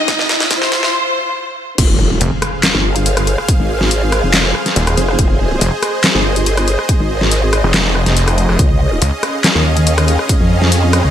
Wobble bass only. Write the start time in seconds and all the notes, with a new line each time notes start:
1.78 F1
2.74 G1
3.60 G#1
4.23 F1
4.97 F1
5.19 F1
6.15 G1
7.00 G#1
8.59 C#2
9.55 D#2
10.40 F2
11.04 C#2